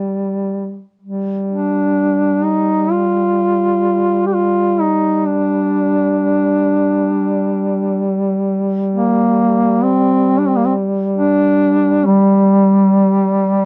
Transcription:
0, 0, Header, 1, 3, 480
1, 0, Start_track
1, 0, Key_signature, -2, "minor"
1, 0, Tempo, 500000
1, 13105, End_track
2, 0, Start_track
2, 0, Title_t, "Duduk"
2, 0, Program_c, 0, 69
2, 1433, Note_on_c, 0, 62, 75
2, 2351, Note_on_c, 0, 63, 80
2, 2365, Note_off_c, 0, 62, 0
2, 2802, Note_on_c, 0, 65, 85
2, 2816, Note_off_c, 0, 63, 0
2, 4089, Note_off_c, 0, 65, 0
2, 4096, Note_on_c, 0, 67, 58
2, 4163, Note_on_c, 0, 65, 94
2, 4177, Note_off_c, 0, 67, 0
2, 4620, Note_on_c, 0, 63, 83
2, 4634, Note_off_c, 0, 65, 0
2, 5062, Note_on_c, 0, 62, 83
2, 5077, Note_off_c, 0, 63, 0
2, 7741, Note_off_c, 0, 62, 0
2, 8594, Note_on_c, 0, 58, 87
2, 9443, Note_on_c, 0, 60, 107
2, 9457, Note_off_c, 0, 58, 0
2, 9967, Note_on_c, 0, 62, 81
2, 9981, Note_off_c, 0, 60, 0
2, 10061, Note_on_c, 0, 60, 80
2, 10075, Note_off_c, 0, 62, 0
2, 10143, Note_on_c, 0, 58, 87
2, 10158, Note_off_c, 0, 60, 0
2, 10229, Note_on_c, 0, 60, 82
2, 10243, Note_off_c, 0, 58, 0
2, 10306, Note_off_c, 0, 60, 0
2, 10731, Note_on_c, 0, 62, 108
2, 11574, Note_on_c, 0, 55, 98
2, 11588, Note_off_c, 0, 62, 0
2, 13105, Note_off_c, 0, 55, 0
2, 13105, End_track
3, 0, Start_track
3, 0, Title_t, "Duduk"
3, 0, Program_c, 1, 69
3, 0, Note_on_c, 1, 55, 42
3, 810, Note_off_c, 1, 55, 0
3, 974, Note_on_c, 1, 55, 41
3, 13105, Note_off_c, 1, 55, 0
3, 13105, End_track
0, 0, End_of_file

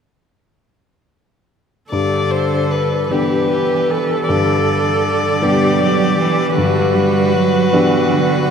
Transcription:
0, 0, Header, 1, 5, 480
1, 0, Start_track
1, 0, Key_signature, 1, "major"
1, 0, Tempo, 806452
1, 1135, Time_signature, 6, 3, 24, 8
1, 2085, Tempo, 768246
1, 5210, End_track
2, 0, Start_track
2, 0, Title_t, "Violin"
2, 0, Program_c, 0, 40
2, 1133, Note_on_c, 0, 74, 33
2, 1373, Note_on_c, 0, 72, 35
2, 1382, Note_off_c, 0, 74, 0
2, 1613, Note_on_c, 0, 71, 31
2, 1622, Note_off_c, 0, 72, 0
2, 1838, Note_off_c, 0, 71, 0
2, 1841, Note_on_c, 0, 71, 30
2, 2549, Note_off_c, 0, 71, 0
2, 2571, Note_on_c, 0, 74, 33
2, 3970, Note_off_c, 0, 74, 0
2, 3997, Note_on_c, 0, 71, 44
2, 5210, Note_off_c, 0, 71, 0
2, 5210, End_track
3, 0, Start_track
3, 0, Title_t, "Viola"
3, 0, Program_c, 1, 41
3, 1137, Note_on_c, 1, 69, 32
3, 1853, Note_on_c, 1, 67, 31
3, 1862, Note_off_c, 1, 69, 0
3, 2078, Note_off_c, 1, 67, 0
3, 2082, Note_on_c, 1, 67, 36
3, 2333, Note_on_c, 1, 69, 41
3, 2342, Note_off_c, 1, 67, 0
3, 3285, Note_on_c, 1, 67, 42
3, 3295, Note_off_c, 1, 69, 0
3, 3998, Note_off_c, 1, 67, 0
3, 4007, Note_on_c, 1, 66, 43
3, 5210, Note_off_c, 1, 66, 0
3, 5210, End_track
4, 0, Start_track
4, 0, Title_t, "Grand piano"
4, 0, Program_c, 2, 0
4, 1143, Note_on_c, 2, 43, 32
4, 1246, Control_c, 2, 64, 127
4, 1832, Note_off_c, 2, 43, 0
4, 1852, Note_on_c, 2, 59, 21
4, 1853, Note_on_c, 2, 62, 24
4, 1857, Note_on_c, 2, 67, 25
4, 2544, Note_off_c, 2, 59, 0
4, 2545, Note_off_c, 2, 62, 0
4, 2547, Note_off_c, 2, 67, 0
4, 2576, Note_on_c, 2, 43, 35
4, 2580, Control_c, 2, 64, 0
4, 2683, Control_c, 2, 64, 127
4, 3260, Note_off_c, 2, 43, 0
4, 3285, Note_on_c, 2, 59, 27
4, 3285, Note_on_c, 2, 62, 31
4, 3290, Note_on_c, 2, 67, 31
4, 3973, Note_off_c, 2, 59, 0
4, 3973, Note_off_c, 2, 62, 0
4, 3975, Note_off_c, 2, 67, 0
4, 4004, Control_c, 2, 64, 0
4, 4007, Note_on_c, 2, 43, 41
4, 4110, Control_c, 2, 64, 127
4, 4702, Note_off_c, 2, 43, 0
4, 4724, Note_on_c, 2, 59, 33
4, 4728, Note_on_c, 2, 62, 33
4, 4728, Note_on_c, 2, 67, 35
4, 5210, Note_off_c, 2, 59, 0
4, 5210, Note_off_c, 2, 62, 0
4, 5210, Note_off_c, 2, 67, 0
4, 5210, End_track
5, 0, Start_track
5, 0, Title_t, "Cello"
5, 0, Program_c, 3, 42
5, 1134, Note_on_c, 3, 50, 28
5, 1825, Note_off_c, 3, 50, 0
5, 1850, Note_on_c, 3, 52, 29
5, 2573, Note_on_c, 3, 50, 34
5, 2582, Note_off_c, 3, 52, 0
5, 3275, Note_on_c, 3, 55, 36
5, 3285, Note_off_c, 3, 50, 0
5, 3511, Note_on_c, 3, 54, 40
5, 3521, Note_off_c, 3, 55, 0
5, 3749, Note_off_c, 3, 54, 0
5, 3752, Note_on_c, 3, 52, 42
5, 3992, Note_on_c, 3, 50, 41
5, 4001, Note_off_c, 3, 52, 0
5, 4234, Note_on_c, 3, 55, 44
5, 4244, Note_off_c, 3, 50, 0
5, 4476, Note_on_c, 3, 54, 42
5, 4486, Note_off_c, 3, 55, 0
5, 4724, Note_on_c, 3, 52, 40
5, 4734, Note_off_c, 3, 54, 0
5, 4969, Note_on_c, 3, 50, 46
5, 4979, Note_off_c, 3, 52, 0
5, 5200, Note_off_c, 3, 50, 0
5, 5210, End_track
0, 0, End_of_file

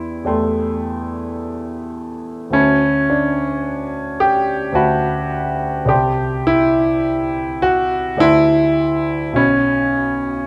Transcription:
0, 0, Header, 1, 2, 480
1, 0, Start_track
1, 0, Tempo, 1132075
1, 1082, Time_signature, 3, 2, 24, 8
1, 1083, Tempo, 1102941
1, 2043, Tempo, 1153846
1, 3963, Tempo, 1204819
1, 4399, End_track
2, 0, Start_track
2, 0, Title_t, "Grand piano"
2, 0, Program_c, 0, 0
2, 0, Control_c, 0, 64, 127
2, 0, Note_on_c, 0, 40, 37
2, 0, Note_on_c, 0, 64, 75
2, 0, Note_on_c, 0, 67, 33
2, 0, Note_on_c, 0, 74, 30
2, 0, Note_on_c, 0, 79, 30
2, 0, Note_on_c, 0, 84, 35
2, 96, Note_off_c, 0, 40, 0
2, 98, Note_off_c, 0, 67, 0
2, 101, Note_off_c, 0, 74, 0
2, 102, Note_on_c, 0, 40, 45
2, 103, Note_off_c, 0, 79, 0
2, 105, Note_off_c, 0, 84, 0
2, 105, Note_on_c, 0, 67, 36
2, 108, Note_on_c, 0, 74, 35
2, 113, Note_on_c, 0, 79, 37
2, 114, Note_on_c, 0, 57, 79
2, 117, Note_on_c, 0, 84, 36
2, 120, Note_off_c, 0, 64, 0
2, 1055, Note_off_c, 0, 40, 0
2, 1056, Note_off_c, 0, 67, 0
2, 1058, Note_off_c, 0, 74, 0
2, 1060, Note_off_c, 0, 79, 0
2, 1060, Note_on_c, 0, 38, 45
2, 1063, Note_off_c, 0, 84, 0
2, 1065, Note_on_c, 0, 66, 36
2, 1069, Note_on_c, 0, 76, 37
2, 1072, Note_on_c, 0, 81, 40
2, 1074, Note_on_c, 0, 61, 93
2, 1077, Note_on_c, 0, 83, 39
2, 1078, Note_off_c, 0, 57, 0
2, 1089, Control_c, 0, 64, 0
2, 1159, Control_c, 0, 64, 127
2, 1319, Note_on_c, 0, 62, 68
2, 1320, Note_off_c, 0, 61, 0
2, 1800, Note_on_c, 0, 67, 97
2, 1801, Note_off_c, 0, 62, 0
2, 2012, Note_off_c, 0, 38, 0
2, 2015, Note_off_c, 0, 66, 0
2, 2017, Note_off_c, 0, 76, 0
2, 2018, Note_off_c, 0, 81, 0
2, 2021, Note_off_c, 0, 83, 0
2, 2026, Note_on_c, 0, 38, 54
2, 2033, Note_on_c, 0, 76, 41
2, 2038, Note_on_c, 0, 81, 48
2, 2040, Note_off_c, 0, 67, 0
2, 2040, Note_on_c, 0, 66, 85
2, 2041, Note_on_c, 0, 83, 44
2, 2495, Note_off_c, 0, 38, 0
2, 2498, Note_on_c, 0, 36, 49
2, 2499, Note_off_c, 0, 76, 0
2, 2502, Note_off_c, 0, 81, 0
2, 2503, Note_off_c, 0, 83, 0
2, 2506, Note_on_c, 0, 74, 40
2, 2511, Note_on_c, 0, 67, 89
2, 2511, Note_on_c, 0, 81, 41
2, 2512, Note_on_c, 0, 84, 39
2, 2517, Note_off_c, 0, 66, 0
2, 2525, Control_c, 0, 64, 0
2, 2587, Control_c, 0, 64, 127
2, 2753, Note_on_c, 0, 64, 96
2, 2755, Note_off_c, 0, 67, 0
2, 3234, Note_on_c, 0, 66, 99
2, 3235, Note_off_c, 0, 64, 0
2, 3450, Note_off_c, 0, 36, 0
2, 3454, Note_off_c, 0, 74, 0
2, 3457, Note_off_c, 0, 81, 0
2, 3457, Note_off_c, 0, 84, 0
2, 3459, Note_on_c, 0, 38, 54
2, 3462, Note_on_c, 0, 67, 41
2, 3467, Note_on_c, 0, 74, 46
2, 3473, Note_on_c, 0, 81, 47
2, 3475, Note_off_c, 0, 66, 0
2, 3475, Note_on_c, 0, 64, 114
2, 3476, Note_on_c, 0, 84, 46
2, 3483, Control_c, 0, 64, 0
2, 3556, Control_c, 0, 64, 127
2, 3936, Note_off_c, 0, 38, 0
2, 3938, Note_off_c, 0, 67, 0
2, 3940, Note_off_c, 0, 74, 0
2, 3943, Note_off_c, 0, 81, 0
2, 3943, Note_on_c, 0, 35, 49
2, 3945, Note_off_c, 0, 84, 0
2, 3948, Note_on_c, 0, 66, 40
2, 3953, Note_on_c, 0, 75, 37
2, 3956, Note_on_c, 0, 80, 41
2, 3957, Note_on_c, 0, 61, 93
2, 3959, Note_off_c, 0, 64, 0
2, 3959, Note_on_c, 0, 83, 40
2, 3965, Control_c, 0, 64, 0
2, 4029, Control_c, 0, 64, 127
2, 4399, Note_off_c, 0, 35, 0
2, 4399, Note_off_c, 0, 61, 0
2, 4399, Note_off_c, 0, 66, 0
2, 4399, Note_off_c, 0, 75, 0
2, 4399, Note_off_c, 0, 80, 0
2, 4399, Note_off_c, 0, 83, 0
2, 4399, End_track
0, 0, End_of_file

